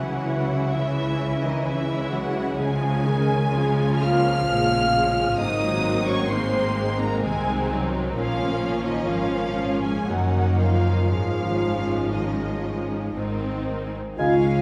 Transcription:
0.00 2.56 C#2 medium
0.00 2.55 C#3 medium
0.00 2.57 C#3 medium
0.00 0.73 E3 medium
0.00 0.76 F#3 medium
0.00 0.73 C#4 medium
0.00 1.63 E4 medium
0.00 0.77 F#4 medium
0.00 2.27 G#4 soft
0.00 0.73 F#5 medium
0.15 0.75 G#3 soft
0.45 1.35 E4 soft
0.73 2.53 E3 medium
0.73 1.44 E3 medium
0.73 1.65 G#3 soft
0.73 2.56 C#4 medium
0.73 1.46 E4 medium
0.73 1.42 E5 medium
1.06 3.88 C#4 soft
1.36 1.96 E4 soft
1.43 1.66 D#3 soft
1.43 1.66 D#4 medium
1.43 1.66 D#5 medium
1.65 2.11 E3 medium
1.65 3.51 G#3 medium
1.65 2.88 G#3 soft
1.65 2.13 E4 medium
1.65 2.55 E4 medium
1.65 2.11 E5 medium
1.97 2.61 E4 soft
2.11 2.57 F#3 medium
2.11 2.57 F#4 medium
2.11 2.57 F#5 medium
2.28 5.09 G#4 soft
2.56 4.46 C#2 medium
2.56 4.46 C#3 medium
2.56 5.43 C#3 medium
2.56 3.04 F3 medium
2.56 4.05 G#3 medium
2.56 3.53 C#4 medium
2.56 4.05 G#4 medium
2.56 4.04 G#5 medium
2.89 3.54 G#3 soft
3.04 3.54 D#3 medium
3.21 4.19 F4 soft
3.54 5.39 F3 medium
3.54 4.50 G#3 soft
3.54 4.04 G#3 medium
3.54 4.49 C#4 medium
3.54 4.50 F4 medium
3.89 5.43 C#4 soft
4.03 4.50 A#3 medium
4.03 5.21 F4 medium
4.03 5.37 F5 medium
4.03 5.39 F6 medium
4.21 4.79 F4 soft
4.49 5.39 A#1 medium
4.49 5.39 A#2 medium
4.49 4.93 G#3 medium
4.49 8.20 G#3 soft
4.49 5.38 C#4 medium
4.80 5.43 F4 medium
4.94 5.38 G#3 medium
5.10 8.20 G#4 medium
5.38 7.19 G#1 medium
5.38 7.19 G#2 medium
5.38 8.20 G#2 medium
5.38 6.30 F#3 medium
5.38 7.23 A#3 medium
5.38 6.29 C4 medium
5.38 6.05 D#4 medium
5.38 6.29 D#4 medium
5.38 6.09 D#5 medium
5.38 6.06 D#6 medium
5.69 6.29 D#3 soft
6.00 6.92 F#4 soft
6.06 6.30 C#4 medium
6.06 6.32 C#5 medium
6.06 6.31 C#6 medium
6.27 7.24 D#3 soft
6.27 7.21 G#3 medium
6.27 6.98 C4 medium
6.27 8.12 C4 medium
6.27 7.21 D#4 medium
6.27 7.01 C5 medium
6.27 6.99 C6 medium
6.62 8.20 C4 soft
6.93 7.54 F#4 soft
6.99 7.22 A#3 medium
6.99 7.23 A#4 medium
6.99 7.23 A#5 medium
7.21 8.16 C2 soft
7.21 8.16 C3 medium
7.21 8.21 D#3 soft
7.21 7.68 G#3 medium
7.21 7.70 G#3 medium
7.21 8.16 C4 medium
7.21 8.14 D#4 medium
7.21 7.69 G#4 medium
7.21 7.68 G#5 medium
7.55 8.20 F#4 soft
7.70 8.16 F#3 medium
7.87 10.76 A#4 soft
8.15 9.08 A#1 medium
8.15 9.07 A#2 medium
8.15 10.14 A#2 medium
8.15 8.81 F3 medium
8.15 10.05 F3 medium
8.15 9.08 A#3 medium
8.15 10.06 C#4 medium
8.15 9.08 C#4 medium
8.15 8.88 F4 medium
8.15 8.82 F5 medium
8.49 9.11 F3 soft
8.80 9.75 F4 soft
8.86 9.10 D#3 medium
8.86 9.09 D#4 medium
8.86 9.10 D#5 medium
9.08 10.06 G#1 medium
9.08 10.06 G#2 medium
9.08 9.83 F3 medium
9.08 11.16 F3 soft
9.08 10.07 A#3 medium
9.08 10.06 C#4 medium
9.08 9.84 F4 medium
9.08 9.84 F5 medium
9.44 10.43 C#4 soft
9.76 10.76 F4 soft
9.83 10.08 G#3 medium
9.83 10.10 G#4 medium
9.83 10.08 G#5 medium
10.07 11.09 F#1 medium
10.07 11.08 F#2 medium
10.07 11.15 F#2 soft
10.07 11.09 D#3 medium
10.07 10.59 F#3 soft
10.07 11.11 A#3 medium
10.07 11.08 C#4 soft
10.07 11.08 D#4 medium
10.07 10.60 F#4 soft
10.07 10.59 F#5 medium
10.44 12.47 C#4 soft
10.56 11.09 F3 medium
10.56 11.09 F4 medium
10.61 11.08 F5 medium
10.77 11.15 F4 soft
10.77 11.15 A#4 soft
11.09 13.15 G#1 soft
11.09 13.15 G#2 medium
11.09 13.15 G#2 soft
11.09 13.17 F3 medium
11.09 12.13 F3 medium
11.09 13.13 G#3 soft
11.09 13.12 C#4 medium
11.09 12.14 F4 medium
11.09 12.12 F5 medium
11.45 12.13 D#3 soft
11.81 12.81 D#4 soft
12.12 13.16 D#3 soft
12.12 13.21 D#3 soft
12.12 13.16 D#4 soft
12.12 13.16 D#5 medium
12.48 13.21 C#4 soft
12.83 13.85 D#4 soft
13.16 13.97 G#1 soft
13.16 13.96 G#2 soft
13.16 14.23 G#2 soft
13.16 13.98 D#3 soft
13.16 13.98 C4 soft
13.16 13.97 D#4 soft
13.51 14.23 C4 soft
13.86 14.23 D#4 soft
13.86 14.62 G#4 soft
14.18 14.62 C#2 medium
14.18 14.62 C#3 medium
14.18 14.35 G#3 medium
14.18 14.62 G#3 medium
14.18 14.62 C#4 medium
14.18 14.62 F4 medium
14.18 14.62 F5 medium
14.18 14.35 F5 medium
14.18 14.62 F5 medium
14.18 14.34 G#5 medium
14.44 14.62 C#4 soft

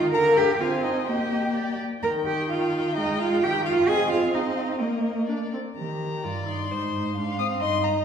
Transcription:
0.00 0.14 D#3 medium
0.00 0.13 F4 loud
0.00 0.11 G5 medium
0.14 0.60 D3 medium
0.14 0.39 A#4 loud
0.14 0.58 F5 medium
0.14 0.22 A#5 medium
0.36 0.62 G4 loud
0.36 0.44 G5 medium
0.59 1.10 C4 medium
0.59 0.85 F4 medium
0.59 0.82 F5 medium
0.59 1.04 G#5 medium
0.82 1.07 D#4 medium
0.82 1.09 D#5 medium
1.07 1.82 A#3 medium
1.07 1.77 G4 medium
1.07 1.52 D#5 soft
1.07 1.78 G5 medium
1.55 1.80 D5 soft
2.02 2.98 D#3 medium
2.02 2.11 A#4 medium
2.02 3.84 G5 medium
2.02 2.11 A#5 medium
2.25 2.49 G4 medium
2.25 2.51 G5 medium
2.50 2.95 F4 medium
2.50 2.97 F5 medium
2.95 3.46 G#3 medium
2.95 3.19 D#4 loud
2.95 3.21 D#5 medium
3.19 3.45 F4 medium
3.19 3.41 F5 medium
3.42 3.89 D#3 medium
3.42 3.66 G4 medium
3.42 3.65 G5 medium
3.65 3.90 F4 loud
3.65 3.73 F5 medium
3.88 4.82 C4 medium
3.88 4.11 G#4 loud
3.88 4.31 D#5 medium
3.88 4.12 G#5 medium
4.10 4.36 F4 medium
4.10 4.33 F5 medium
4.33 4.82 D#4 medium
4.33 4.78 D#5 medium
4.33 4.77 F5 medium
4.79 5.52 A#3 medium
4.79 5.24 A#3 medium
4.79 5.50 A#4 medium
4.79 5.25 D#5 soft
5.28 5.36 D4 soft
5.28 5.53 D5 soft
5.53 5.61 C4 soft
5.76 6.26 D#3 medium
5.76 6.25 G4 soft
5.76 6.43 A#5 medium
6.23 6.73 G2 soft
6.23 6.49 F4 soft
6.23 6.73 D5 medium
6.46 6.70 D#4 soft
6.46 7.36 C6 medium
6.71 7.61 G#2 medium
6.71 7.19 D#4 soft
6.71 7.15 C5 soft
7.16 7.40 D4 medium
7.16 7.62 F5 medium
7.38 7.63 C4 medium
7.38 7.46 D#6 medium
7.60 8.05 G2 medium
7.60 8.05 D#4 medium
7.60 8.05 D#5 medium
7.60 7.85 C6 medium
7.84 8.05 A#5 medium

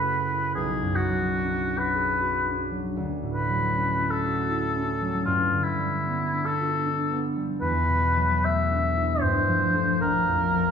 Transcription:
0.00 0.59 F#2 soft
0.00 0.60 C#3 soft
0.00 0.60 A3 soft
0.00 0.29 E4 soft
0.00 1.93 G#4 soft
0.00 0.59 A4 soft
0.00 0.53 B4 soft
0.00 0.60 C#5 soft
0.04 1.65 F#4 soft
0.30 0.59 E4 soft
0.55 3.00 B1 soft
0.55 0.97 G#4 soft
0.82 3.00 F#2 soft
0.95 1.80 F#4 soft
1.09 2.70 F#3 soft
1.37 2.45 D4 soft
1.66 2.18 F#4 soft
1.78 2.58 B4 soft
1.94 3.01 G#4 soft
2.20 4.23 F#4 soft
2.46 6.32 D4 soft
2.71 3.47 F#3 soft
2.97 5.29 D2 soft
3.23 5.29 A2 soft
3.34 4.12 B4 medium
3.49 5.00 F#3 soft
3.74 4.74 C#4 soft
3.99 4.49 E4 soft
4.11 5.25 A4 soft
4.25 5.29 F#4 soft
4.50 5.29 E4 soft
4.76 5.29 C#4 soft
5.01 5.29 F#3 soft
5.26 7.66 G2 soft
5.26 5.65 F4 soft
5.52 7.66 D3 soft
5.63 6.47 E4 soft
5.78 7.35 G3 soft
6.06 7.10 B3 soft
6.34 6.85 D4 soft
6.46 7.24 A4 soft
6.60 7.66 F4 soft
6.86 8.70 D4 soft
7.12 9.26 B3 soft
7.37 7.66 G3 soft
7.61 9.25 E2 soft
7.61 8.47 B4 medium
7.89 9.25 B2 soft
8.17 9.25 F#3 soft
8.44 10.04 A3 soft
8.44 9.23 E5 medium
8.71 9.72 D4 soft
8.96 9.25 E4 soft
9.21 10.04 G2 soft
9.21 10.00 C5 medium
9.47 10.52 F3 soft
9.73 10.04 D4 soft
9.73 10.05 A4 soft
10.00 10.71 A#1 soft
10.00 10.71 A#4 medium
10.27 10.71 F2 soft
10.53 10.71 F3 soft

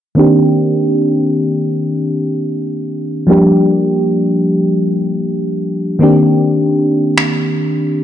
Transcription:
0.15 3.23 D#3 medium
0.15 3.24 A#3 medium
0.15 3.24 C4 medium
0.15 3.25 D4 medium
0.15 3.25 G4 medium
3.27 5.96 F3 medium
3.27 5.97 G3 medium
3.27 5.97 A#3 medium
3.27 5.98 D4 medium
3.31 5.98 G4 medium
5.99 8.04 D#3 medium
5.99 8.04 A#3 medium
5.99 8.04 C4 medium
5.99 8.04 D4 medium
5.99 8.04 G4 medium
7.18 finger snap loud

